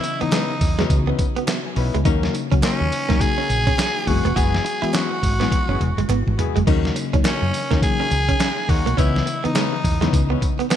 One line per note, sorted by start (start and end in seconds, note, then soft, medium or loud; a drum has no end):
0.00 0.16 C#3 medium
0.00 0.16 E3 medium
0.00 0.16 B3 medium
0.00 0.23 E4 loud
0.00 0.16 D#5 medium
0.00 muted clean electric guitar stroke soft
0.00 closed hi-hat medium
0.00 tambourine medium
0.21 0.72 C#3 medium
0.21 0.72 E3 medium
0.21 0.27 B3 medium
0.21 0.72 B3 medium
0.21 1.08 D#4 medium
0.21 0.72 D#4 medium
0.21 muted fretless electric bass stroke soft
0.21 closed hi-hat medium
0.32 0.42 G#3 medium
0.32 0.54 B3 medium
0.32 0.54 C#4 medium
0.32 0.54 D#4 medium
0.32 0.54 E4 medium
0.32 0.54 B4 medium
0.32 snare loud
0.32 clap medium
0.32 closed hi-hat medium
0.32 tambourine medium
0.50 muted clean electric guitar stroke soft
0.61 0.83 E2 medium
0.61 kick loud
0.61 open hi-hat medium
0.61 tambourine medium
0.79 1.79 C#3 medium
0.79 1.80 E3 medium
0.79 0.85 G#3 medium
0.79 0.97 B3 medium
0.79 1.80 B3 medium
0.79 0.97 C#4 medium
0.79 0.97 D#4 medium
0.79 0.97 E4 medium
0.79 1.80 F#4 medium
0.79 0.97 B4 medium
0.79 snare medium
0.79 closed hi-hat medium
0.90 1.12 C#2 loud
0.90 kick loud
0.90 closed hi-hat medium
0.90 tambourine medium
1.07 1.14 B3 medium
1.07 1.26 B3 medium
1.07 1.25 C#4 medium
1.07 1.26 D#4 medium
1.07 1.26 E4 medium
1.07 1.26 B4 medium
1.19 muted clean electric guitar stroke soft
1.19 kick loud
1.19 closed hi-hat medium
1.19 tambourine medium
1.36 1.43 B3 medium
1.36 closed hi-hat medium
1.47 1.57 B3 loud
1.47 1.65 E5 medium
1.47 snare loud
1.47 clap medium
1.47 closed hi-hat medium
1.47 tambourine medium
1.66 1.76 G#5 medium
1.76 1.90 B1 medium
1.76 1.99 B3 medium
1.76 1.98 C#4 medium
1.76 1.98 D#4 medium
1.76 1.99 E4 medium
1.76 1.99 B4 medium
1.76 2.04 B5 medium
1.76 muted clean electric guitar stroke soft
1.76 open hi-hat medium
1.94 2.03 C#2 medium
1.94 2.01 G#3 medium
1.94 closed hi-hat medium
2.04 2.27 D#2 loud
2.04 2.46 C#3 medium
2.04 2.46 F#3 medium
2.04 2.32 A#3 loud
2.04 2.47 A#3 medium
2.04 2.32 C#4 loud
2.04 2.32 D#4 medium
2.04 2.15 D#4 medium
2.04 2.47 D#4 medium
2.04 2.32 F#4 medium
2.04 2.32 A#4 loud
2.04 kick loud
2.04 closed hi-hat medium
2.04 tambourine medium
2.23 snare medium
2.34 muted clean electric guitar stroke medium
2.34 closed hi-hat medium
2.34 tambourine medium
2.52 2.60 C#2 medium
2.52 3.02 C#3 medium
2.52 3.02 F#3 medium
2.52 3.03 A#3 medium
2.52 2.58 C#4 medium
2.52 3.03 F#4 medium
2.52 kick loud
2.52 closed hi-hat medium
2.63 2.72 A#3 medium
2.63 2.85 A#3 medium
2.63 2.85 C#4 medium
2.63 3.23 C#4 loud
2.63 2.85 D#4 medium
2.63 2.85 F#4 medium
2.63 2.85 A#4 medium
2.63 snare loud
2.63 clap medium
2.63 closed hi-hat medium
2.63 tambourine medium
2.64 clap medium
2.80 2.89 D#2 medium
2.80 muted clean electric guitar stroke soft
2.92 open hi-hat medium
2.92 tambourine medium
3.09 3.18 C#2 medium
3.09 4.07 C#3 medium
3.09 4.07 F#3 medium
3.09 3.15 A#3 medium
3.09 3.27 A#3 medium
3.09 4.08 A#3 medium
3.09 3.27 C#4 medium
3.09 3.27 D#4 medium
3.09 4.08 D#4 medium
3.09 3.27 F#4 medium
3.09 3.27 A#4 medium
3.09 kick medium
3.09 snare medium
3.09 closed hi-hat medium
3.21 4.09 G#4 loud
3.21 kick loud
3.21 closed hi-hat medium
3.21 tambourine medium
3.38 3.56 A#3 medium
3.38 3.44 C#4 medium
3.38 3.56 C#4 medium
3.38 3.56 D#4 medium
3.38 3.56 F#4 medium
3.38 3.56 A#4 medium
3.49 3.71 A#1 medium
3.49 muted clean electric guitar stroke soft
3.49 closed hi-hat medium
3.49 tambourine medium
3.67 3.73 C#4 medium
3.67 kick medium
3.67 closed hi-hat medium
3.78 3.88 C#4 medium
3.78 snare loud
3.78 clap medium
3.78 closed hi-hat medium
3.78 tambourine loud
4.07 4.21 F#1 loud
4.07 4.73 E3 medium
4.07 4.73 G#3 medium
4.07 4.29 G#3 medium
4.07 4.29 B3 medium
4.07 4.74 B3 medium
4.07 4.29 E4 medium
4.07 4.29 F#4 medium
4.07 4.38 F#4 loud
4.07 4.74 F#4 medium
4.07 4.29 G#4 medium
4.07 muted clean electric guitar stroke soft
4.07 kick loud
4.07 open hi-hat medium
4.25 4.33 E1 loud
4.25 4.31 B3 medium
4.25 closed hi-hat medium
4.36 4.58 F#1 loud
4.36 4.63 G#3 loud
4.36 4.63 B3 loud
4.36 4.63 E4 medium
4.36 4.46 F#4 loud
4.36 4.63 F#4 medium
4.36 4.96 G#4 loud
4.36 4.63 G#4 loud
4.36 kick loud
4.36 closed hi-hat medium
4.36 tambourine medium
4.55 snare medium
4.65 muted clean electric guitar stroke soft
4.65 closed hi-hat medium
4.65 tambourine medium
4.82 5.33 E3 medium
4.82 5.33 G#3 medium
4.82 5.33 B3 medium
4.82 4.88 E4 medium
4.82 5.34 F#4 medium
4.82 muted fretless electric bass stroke medium
4.82 closed hi-hat medium
4.93 5.16 G#3 medium
4.93 5.16 B3 medium
4.93 5.03 C#4 medium
4.93 5.16 E4 medium
4.93 5.16 F#4 medium
4.93 6.39 F#4 loud
4.93 5.16 G#4 medium
4.93 snare loud
4.93 clap medium
4.93 closed hi-hat medium
4.93 tambourine medium
4.96 clap medium
5.11 muted clean electric guitar stroke soft
5.23 5.45 G#1 medium
5.23 kick loud
5.23 open hi-hat medium
5.23 tambourine medium
5.40 6.41 E3 medium
5.40 5.58 G#3 medium
5.40 6.41 G#3 medium
5.40 5.46 B3 medium
5.40 5.58 B3 medium
5.40 6.41 B3 medium
5.40 5.58 E4 medium
5.40 6.41 E4 medium
5.40 5.58 F#4 medium
5.40 5.58 G#4 medium
5.40 snare medium
5.40 closed hi-hat medium
5.52 kick loud
5.52 closed hi-hat medium
5.52 high tom medium
5.68 5.77 F#1 loud
5.68 5.87 G#3 medium
5.68 5.87 B3 medium
5.68 5.75 C#4 medium
5.68 5.87 E4 medium
5.68 5.87 F#4 medium
5.68 5.87 G#4 medium
5.80 5.94 E1 medium
5.80 muted clean electric guitar stroke soft
5.80 closed hi-hat medium
5.80 mid tom medium
5.98 6.06 F#1 medium
5.98 6.04 G#3 medium
5.98 closed hi-hat medium
6.09 6.22 G#1 loud
6.09 6.19 B3 medium
6.09 clap medium
6.09 closed hi-hat medium
6.09 mid tom medium
6.27 6.35 G#1 medium
6.27 mid tom medium
6.38 6.60 G#3 medium
6.38 6.60 B3 medium
6.38 6.60 E4 medium
6.38 6.60 F#4 medium
6.38 6.60 G#4 medium
6.38 muted clean electric guitar stroke soft
6.38 closed hi-hat medium
6.38 floor tom loud
6.56 6.64 F#1 medium
6.56 6.62 G#3 medium
6.56 closed hi-hat medium
6.56 floor tom loud
6.66 6.89 D#2 loud
6.66 7.08 C#3 medium
6.66 7.08 F#3 medium
6.66 6.94 A#3 medium
6.66 7.08 A#3 medium
6.66 6.94 C#4 loud
6.66 6.94 D#4 medium
6.66 6.77 D#4 medium
6.66 7.08 D#4 medium
6.66 6.94 F#4 medium
6.66 6.94 A#4 loud
6.66 kick loud
6.66 crash medium
6.66 tambourine medium
6.85 snare medium
6.96 muted clean electric guitar stroke soft
6.96 closed hi-hat medium
6.96 tambourine medium
7.13 7.22 C#2 loud
7.13 7.64 C#3 medium
7.13 7.64 F#3 medium
7.13 7.64 A#3 medium
7.13 7.20 C#4 medium
7.13 7.64 D#4 medium
7.13 kick medium
7.13 closed hi-hat medium
7.24 7.34 A#3 medium
7.24 7.47 A#3 medium
7.24 7.46 C#4 medium
7.24 7.46 D#4 medium
7.24 7.47 F#4 medium
7.24 7.47 A#4 medium
7.24 snare loud
7.24 clap medium
7.24 closed hi-hat medium
7.24 tambourine medium
7.26 7.79 C#4 loud
7.26 clap medium
7.42 7.50 F#2 medium
7.42 muted clean electric guitar stroke soft
7.54 open hi-hat medium
7.54 tambourine medium
7.71 7.80 D#2 medium
7.71 8.71 C#3 medium
7.71 7.76 E3 medium
7.71 7.77 A#3 medium
7.71 7.89 A#3 medium
7.71 8.72 A#3 medium
7.71 7.89 C#4 medium
7.71 7.89 D#4 medium
7.71 8.72 D#4 medium
7.71 7.89 F#4 medium
7.71 7.89 A#4 medium
7.71 kick medium
7.71 snare medium
7.71 closed hi-hat medium
7.78 8.75 F#3 medium
7.82 8.71 G#4 loud
7.82 kick loud
7.82 closed hi-hat medium
7.82 tambourine medium
7.99 8.18 A#3 medium
7.99 8.17 C#4 medium
7.99 8.06 C#4 medium
7.99 8.18 D#4 medium
7.99 8.18 F#4 medium
7.99 8.18 A#4 medium
8.11 8.33 C#2 loud
8.11 muted clean electric guitar stroke soft
8.11 closed hi-hat medium
8.11 tambourine medium
8.29 8.35 C#4 medium
8.29 kick medium
8.29 closed hi-hat medium
8.40 8.50 C#4 medium
8.40 snare loud
8.40 clap medium
8.40 closed hi-hat medium
8.40 tambourine loud
8.69 8.82 D#2 loud
8.69 8.91 A#3 medium
8.69 8.91 C#4 medium
8.69 8.91 D#4 medium
8.69 8.91 F#4 medium
8.69 9.00 F#4 loud
8.69 8.91 A#4 medium
8.69 muted clean electric guitar stroke soft
8.69 kick loud
8.69 open hi-hat medium
8.86 8.95 B1 medium
8.86 8.92 A#3 medium
8.86 closed hi-hat medium
8.97 9.20 C#2 loud
8.97 9.39 C#3 medium
8.97 9.39 E3 medium
8.97 9.25 B3 loud
8.97 9.39 B3 medium
8.97 9.07 C#4 loud
8.97 9.25 C#4 loud
8.97 9.25 D#4 medium
8.97 9.25 E4 medium
8.97 9.47 E4 loud
8.97 9.25 B4 loud
8.97 9.39 D#5 medium
8.97 kick loud
8.97 closed hi-hat medium
8.97 tambourine medium
9.16 snare medium
9.26 muted clean electric guitar stroke medium
9.26 closed hi-hat medium
9.26 tambourine medium
9.44 9.95 C#3 medium
9.44 9.95 E3 medium
9.44 9.50 B3 medium
9.44 9.95 B3 medium
9.44 10.31 D#4 medium
9.44 9.95 D#4 medium
9.44 muted fretless electric bass stroke medium
9.44 closed hi-hat soft
9.55 9.65 G#3 medium
9.55 9.77 B3 medium
9.55 9.77 C#4 medium
9.55 9.77 D#4 medium
9.55 9.77 E4 medium
9.55 9.77 B4 medium
9.55 snare loud
9.55 clap medium
9.55 closed hi-hat medium
9.55 tambourine medium
9.73 muted clean electric guitar stroke soft
9.84 10.06 E2 loud
9.84 kick loud
9.84 open hi-hat medium
9.84 tambourine medium
10.01 10.76 C#3 medium
10.01 10.76 E3 medium
10.01 10.08 G#3 medium
10.01 10.20 B3 medium
10.01 10.76 B3 medium
10.01 10.20 C#4 medium
10.01 10.20 D#4 medium
10.01 10.76 D#4 medium
10.01 10.20 E4 medium
10.01 10.20 B4 medium
10.01 snare medium
10.01 closed hi-hat medium
10.13 10.35 C#2 loud
10.13 kick loud
10.13 closed hi-hat medium
10.13 tambourine medium
10.30 10.36 B3 medium
10.30 10.49 B3 medium
10.30 10.48 C#4 medium
10.30 10.48 D#4 medium
10.30 10.48 E4 medium
10.30 10.49 B4 medium
10.41 muted clean electric guitar stroke soft
10.41 kick medium
10.41 closed hi-hat medium
10.41 tambourine medium
10.59 10.65 B3 medium
10.59 closed hi-hat medium
10.70 10.76 B3 loud
10.70 snare loud
10.70 clap medium
10.70 closed hi-hat medium
10.70 tambourine loud
10.72 clap medium